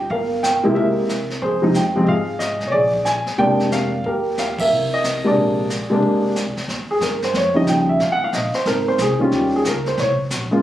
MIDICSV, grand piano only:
0, 0, Header, 1, 2, 480
1, 0, Start_track
1, 0, Tempo, 329308
1, 146, Time_signature, 4, 2, 24, 8
1, 15481, End_track
2, 0, Start_track
2, 0, Title_t, "Grand piano"
2, 0, Program_c, 0, 0
2, 156, Note_on_c, 0, 77, 73
2, 180, Note_on_c, 0, 70, 54
2, 597, Note_off_c, 0, 77, 0
2, 626, Note_on_c, 0, 79, 70
2, 923, Note_on_c, 0, 48, 67
2, 939, Note_on_c, 0, 56, 65
2, 946, Note_on_c, 0, 58, 61
2, 958, Note_on_c, 0, 64, 74
2, 1063, Note_off_c, 0, 70, 0
2, 1093, Note_on_c, 0, 76, 85
2, 1119, Note_off_c, 0, 79, 0
2, 1126, Note_on_c, 0, 70, 64
2, 1545, Note_off_c, 0, 48, 0
2, 1553, Note_off_c, 0, 56, 0
2, 1556, Note_off_c, 0, 58, 0
2, 1563, Note_off_c, 0, 64, 0
2, 1829, Note_off_c, 0, 76, 0
2, 2016, Note_off_c, 0, 70, 0
2, 2072, Note_on_c, 0, 72, 72
2, 2099, Note_on_c, 0, 68, 51
2, 2358, Note_on_c, 0, 48, 66
2, 2373, Note_on_c, 0, 53, 57
2, 2381, Note_on_c, 0, 56, 59
2, 2386, Note_on_c, 0, 63, 75
2, 2519, Note_off_c, 0, 48, 0
2, 2527, Note_off_c, 0, 53, 0
2, 2531, Note_off_c, 0, 56, 0
2, 2534, Note_off_c, 0, 63, 0
2, 2561, Note_off_c, 0, 72, 0
2, 2562, Note_on_c, 0, 79, 80
2, 2845, Note_on_c, 0, 48, 69
2, 2854, Note_on_c, 0, 53, 65
2, 2858, Note_on_c, 0, 56, 65
2, 2872, Note_on_c, 0, 60, 77
2, 2968, Note_on_c, 0, 75, 60
2, 2970, Note_off_c, 0, 79, 0
2, 2982, Note_off_c, 0, 68, 0
2, 3003, Note_off_c, 0, 48, 0
2, 3007, Note_off_c, 0, 53, 0
2, 3009, Note_off_c, 0, 56, 0
2, 3016, Note_off_c, 0, 60, 0
2, 3032, Note_off_c, 0, 75, 0
2, 3037, Note_on_c, 0, 77, 91
2, 3053, Note_on_c, 0, 68, 60
2, 3485, Note_on_c, 0, 75, 75
2, 3523, Note_off_c, 0, 77, 0
2, 3897, Note_on_c, 0, 73, 59
2, 3911, Note_off_c, 0, 75, 0
2, 3939, Note_off_c, 0, 68, 0
2, 3959, Note_on_c, 0, 74, 83
2, 3976, Note_off_c, 0, 73, 0
2, 3982, Note_on_c, 0, 68, 56
2, 4447, Note_on_c, 0, 80, 78
2, 4465, Note_off_c, 0, 74, 0
2, 4883, Note_off_c, 0, 68, 0
2, 4923, Note_on_c, 0, 48, 62
2, 4934, Note_on_c, 0, 56, 53
2, 4935, Note_on_c, 0, 79, 93
2, 4941, Note_on_c, 0, 58, 55
2, 4948, Note_off_c, 0, 80, 0
2, 4950, Note_on_c, 0, 74, 64
2, 4955, Note_on_c, 0, 62, 64
2, 5427, Note_on_c, 0, 77, 86
2, 5432, Note_off_c, 0, 79, 0
2, 5657, Note_off_c, 0, 48, 0
2, 5663, Note_off_c, 0, 56, 0
2, 5666, Note_off_c, 0, 58, 0
2, 5673, Note_off_c, 0, 62, 0
2, 5847, Note_off_c, 0, 74, 0
2, 5918, Note_off_c, 0, 77, 0
2, 5921, Note_on_c, 0, 70, 68
2, 5941, Note_on_c, 0, 67, 49
2, 6358, Note_off_c, 0, 70, 0
2, 6398, Note_on_c, 0, 77, 74
2, 6705, Note_off_c, 0, 77, 0
2, 6708, Note_on_c, 0, 76, 80
2, 6723, Note_on_c, 0, 70, 54
2, 6822, Note_off_c, 0, 67, 0
2, 7192, Note_off_c, 0, 76, 0
2, 7197, Note_on_c, 0, 75, 85
2, 7606, Note_off_c, 0, 70, 0
2, 7638, Note_on_c, 0, 48, 59
2, 7644, Note_on_c, 0, 56, 50
2, 7654, Note_on_c, 0, 58, 54
2, 7658, Note_on_c, 0, 62, 59
2, 7676, Note_off_c, 0, 75, 0
2, 7683, Note_on_c, 0, 74, 73
2, 7697, Note_on_c, 0, 68, 50
2, 8262, Note_off_c, 0, 48, 0
2, 8265, Note_off_c, 0, 56, 0
2, 8269, Note_off_c, 0, 58, 0
2, 8272, Note_off_c, 0, 62, 0
2, 8594, Note_on_c, 0, 48, 65
2, 8604, Note_on_c, 0, 56, 58
2, 8620, Note_on_c, 0, 58, 57
2, 8624, Note_on_c, 0, 62, 70
2, 9219, Note_off_c, 0, 48, 0
2, 9225, Note_off_c, 0, 56, 0
2, 9233, Note_off_c, 0, 58, 0
2, 9234, Note_off_c, 0, 62, 0
2, 9527, Note_off_c, 0, 74, 0
2, 9534, Note_off_c, 0, 68, 0
2, 10069, Note_on_c, 0, 68, 66
2, 10227, Note_off_c, 0, 68, 0
2, 10247, Note_on_c, 0, 70, 50
2, 10532, Note_off_c, 0, 70, 0
2, 10560, Note_on_c, 0, 72, 63
2, 10713, Note_off_c, 0, 72, 0
2, 10744, Note_on_c, 0, 73, 67
2, 10990, Note_on_c, 0, 49, 51
2, 11002, Note_on_c, 0, 53, 46
2, 11008, Note_on_c, 0, 55, 47
2, 11017, Note_on_c, 0, 63, 55
2, 11021, Note_off_c, 0, 73, 0
2, 11025, Note_on_c, 0, 75, 70
2, 11185, Note_off_c, 0, 75, 0
2, 11211, Note_on_c, 0, 79, 79
2, 11494, Note_off_c, 0, 79, 0
2, 11502, Note_on_c, 0, 76, 72
2, 11619, Note_off_c, 0, 49, 0
2, 11625, Note_off_c, 0, 53, 0
2, 11627, Note_off_c, 0, 55, 0
2, 11632, Note_off_c, 0, 63, 0
2, 11664, Note_off_c, 0, 76, 0
2, 11691, Note_on_c, 0, 77, 68
2, 11832, Note_off_c, 0, 77, 0
2, 11838, Note_on_c, 0, 78, 88
2, 11986, Note_off_c, 0, 78, 0
2, 12013, Note_on_c, 0, 77, 72
2, 12153, Note_off_c, 0, 77, 0
2, 12167, Note_on_c, 0, 75, 65
2, 12453, Note_off_c, 0, 75, 0
2, 12460, Note_on_c, 0, 72, 71
2, 12623, Note_off_c, 0, 72, 0
2, 12638, Note_on_c, 0, 70, 72
2, 12928, Note_off_c, 0, 70, 0
2, 12948, Note_on_c, 0, 72, 77
2, 13107, Note_off_c, 0, 72, 0
2, 13140, Note_on_c, 0, 68, 61
2, 13396, Note_on_c, 0, 51, 57
2, 13409, Note_on_c, 0, 55, 52
2, 13418, Note_on_c, 0, 61, 57
2, 13420, Note_off_c, 0, 68, 0
2, 13424, Note_on_c, 0, 65, 67
2, 13630, Note_on_c, 0, 67, 52
2, 13905, Note_off_c, 0, 67, 0
2, 13935, Note_on_c, 0, 68, 67
2, 14022, Note_off_c, 0, 51, 0
2, 14029, Note_off_c, 0, 55, 0
2, 14033, Note_off_c, 0, 61, 0
2, 14036, Note_off_c, 0, 65, 0
2, 14082, Note_off_c, 0, 68, 0
2, 14108, Note_on_c, 0, 70, 62
2, 14384, Note_off_c, 0, 70, 0
2, 14397, Note_on_c, 0, 72, 69
2, 14553, Note_off_c, 0, 72, 0
2, 14575, Note_on_c, 0, 73, 70
2, 14750, Note_off_c, 0, 73, 0
2, 15321, Note_on_c, 0, 49, 61
2, 15329, Note_on_c, 0, 56, 60
2, 15343, Note_on_c, 0, 58, 55
2, 15348, Note_on_c, 0, 65, 67
2, 15481, Note_off_c, 0, 49, 0
2, 15481, Note_off_c, 0, 56, 0
2, 15481, Note_off_c, 0, 58, 0
2, 15481, Note_off_c, 0, 65, 0
2, 15481, End_track
0, 0, End_of_file